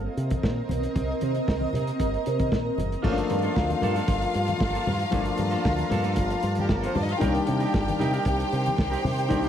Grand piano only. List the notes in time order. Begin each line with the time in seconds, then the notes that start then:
3.03 F3 A3 A#3 C#4
3.11 D4
5.10 F3 A3 A#3 D4
7.18 D#3 G3 A#3 C#4
7.28 D4
9.29 D#3 G3 A#3 D4